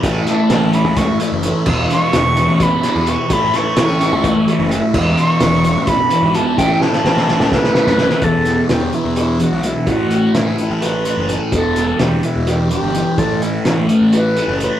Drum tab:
CC |--------------|x-------------|--------------|x-------------|
HH |x-x-x-x-x-x-x-|--x-x-x-x-x-x-|x-x-x-x-x-x-x-|--x-x-x-x-x-x-|
SD |--o-o---o-----|--o-o-----o---|--o-o-o-------|----o---------|
BD |o-------o-----|o-------o-----|o-------o-----|o-------o-----|

CC |--------------|--------------|--------------|--------------|
HH |x-------------|x-x-x-x-x-x-x-|x-x-x-x-x-x-x-|x-x-x-x-x-x-x-|
SD |--oooooooooooo|--o-o---------|----o---o-----|--o-o---o-----|
BD |o-------o-----|o-------------|o-------------|o-------------|

CC |--------------|
HH |x-x-x-x-x-x-x-|
SD |----o---------|
BD |o-------------|